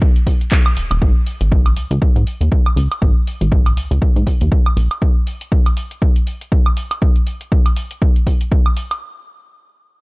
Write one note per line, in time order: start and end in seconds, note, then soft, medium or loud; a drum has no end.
0.02 kick loud
0.16 closed hi-hat soft
0.27 kick medium
0.27 open hi-hat loud
0.41 closed hi-hat medium
0.52 kick loud
0.52 clap loud
0.66 high woodblock medium
0.77 0.88 D#1 soft
0.77 open hi-hat loud
0.91 1.00 D#1 loud
0.91 closed hi-hat medium
0.91 high woodblock medium
1.02 1.13 G#1 medium
1.02 kick loud
1.27 open hi-hat loud
1.41 1.74 G#1 medium
1.41 closed hi-hat medium
1.52 kick loud
1.66 closed hi-hat soft
1.66 high woodblock medium
1.76 1.88 C#2 soft
1.76 open hi-hat loud
1.90 2.00 C#2 loud
1.90 closed hi-hat medium
2.02 kick loud
2.16 2.25 G#2 medium
2.16 closed hi-hat soft
2.27 open hi-hat loud
2.41 2.50 D#2 medium
2.41 closed hi-hat medium
2.52 kick loud
2.66 high woodblock medium
2.76 2.88 C#2 medium
2.76 open hi-hat loud
2.92 closed hi-hat medium
2.92 high woodblock medium
3.02 3.13 G#1 loud
3.02 kick loud
3.27 open hi-hat loud
3.41 3.74 G#1 medium
3.41 closed hi-hat medium
3.52 kick loud
3.66 closed hi-hat soft
3.66 high woodblock medium
3.77 3.88 C#2 soft
3.77 open hi-hat loud
3.91 4.00 C#2 loud
3.91 closed hi-hat medium
4.02 kick loud
4.16 4.25 G#2 medium
4.16 closed hi-hat soft
4.27 kick medium
4.27 open hi-hat medium
4.41 4.50 D#2 medium
4.41 closed hi-hat medium
4.52 kick loud
4.66 high woodblock medium
4.77 4.88 A#1 medium
4.77 open hi-hat medium
4.91 closed hi-hat medium
4.91 high woodblock medium
5.02 kick loud
5.27 open hi-hat loud
5.41 closed hi-hat medium
5.52 kick loud
5.66 closed hi-hat medium
5.66 high woodblock medium
5.77 open hi-hat medium
5.91 closed hi-hat medium
6.02 kick loud
6.16 closed hi-hat medium
6.27 open hi-hat medium
6.41 closed hi-hat medium
6.52 kick loud
6.66 high woodblock medium
6.77 open hi-hat loud
6.91 closed hi-hat medium
6.91 high woodblock medium
7.02 kick loud
7.16 closed hi-hat soft
7.27 open hi-hat loud
7.41 closed hi-hat medium
7.52 kick loud
7.66 closed hi-hat medium
7.66 high woodblock medium
7.76 open hi-hat medium
7.91 closed hi-hat medium
8.02 kick loud
8.16 closed hi-hat medium
8.27 kick medium
8.27 open hi-hat medium
8.41 closed hi-hat medium
8.52 kick loud
8.66 high woodblock medium
8.77 open hi-hat loud
8.91 closed hi-hat medium
8.91 high woodblock medium